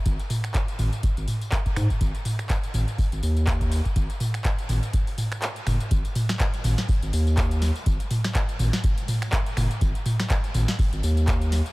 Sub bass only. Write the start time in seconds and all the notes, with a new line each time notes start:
0.06 G#1
0.79 G#1
1.17 G#1
1.76 G#2
2.01 G#1
2.74 G#1
3.12 G#1
3.23 D#2
3.96 G#1
4.69 G#1
5.67 F#1
5.91 G#1
6.64 G#1
7.03 G#1
7.13 D#2
7.86 G#1
8.59 G#1
9.57 F#1
9.81 G#1
10.55 G#1
10.93 G#1
11.03 D#2